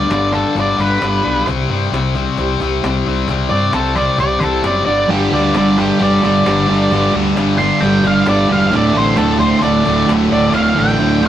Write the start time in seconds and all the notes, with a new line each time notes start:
Already playing: G2 G3 D5
0.09 G1 G2 D3 G3 B3 D5, cajon slap
0.33 G2 D3 G3 A4, cajon bass
0.55 G1 G2 D3 G3 D4, cajon bass
0.60 D5
0.78 G1 G2 D3 G3 B3 B4, cajon bass
1.00 G1 G2 D3 G3, cajon slap
1.23 B1 G2 D3 G3 B3
1.47 C2 C3 G3 C4, cajon bass
1.69 G2 C3 G3 C4
1.91 C2 C3 G3 C4 E4, cajon slap
2.15 C3 G3 C4, cajon bass
2.37 C2 C3 G3 C4 G4, cajon bass
2.60 C2 C3 G3 C4 E4, cajon bass
2.83 C2 C3 G3 C4, cajon slap
3.07 C2 C3 G3 C4 E4
3.28 C2 C3 G3 C4, cajon bass
3.50 G2 C3 G3 C4 D5
3.72 C2 C3 G3 C4 E4 A4, cajon slap
3.95 C3 G3 C4 D5, cajon bass
4.18 C2 C3 G3 C4 G4 D5, cajon bass
4.40 C2 C3 G3 C4 E4 A4, cajon bass
4.63 F#1 C3 G3 C4 D5, cajon slap
4.86 G1 G2 D3 G3 D5
5.09 G1 G2 D3 G3 G4
5.31 D2 G2 D3 G3 D5
5.54 G1 G2 D3 G3 D5, cajon slap
5.78 G2 D3 G3 G4, cajon bass
5.99 G1 G2 D3 G3 D5, cajon bass
6.22 G1 G2 D3 G3 D5, cajon bass
6.46 G1 G2 D3 G3, cajon slap
6.68 G1 G2 D3 G3
6.91 G1 G2 D3 G3, cajon bass
7.14 D2 G2 D3 G3
7.37 G1 G2 D3 G3, cajon slap
7.58 G2 D3 G3 C6, cajon bass
7.81 G1 G2 D3 G3 G5, cajon bass
8.04 G1 G2 D3 G3 F5, cajon bass
8.26 G1 G2 D3 G3 D5, cajon slap
8.38 cajon slap
8.49 E1 G2 D3 G3
8.53 F5
8.71 D1 D2 A2 D3, cajon bass
8.76 D5
8.84 cajon slap
8.93 A1 D2 A2 D3
8.98 C5
9.16 D1 D2 A2 D3 A4, cajon slap
9.39 D2 A2 D3 C5, cajon bass
9.62 D1 D2 A2 D3 D5, cajon bass
9.85 D1 D2 A2 D3, cajon bass
10.07 D1 D2 A2 D3, cajon slap
10.21 cajon slap
10.29 D1 D2 A2 D3 D5
10.53 D1 D2 A2 D3 F5, cajon bass, cajon slap
10.75 A1 D2 A2 D3, cajon slap
10.80 G5
10.89 cajon slap
10.98 D1 D2 A2 D3, cajon slap
11.21 D2 A2 D3, cajon slap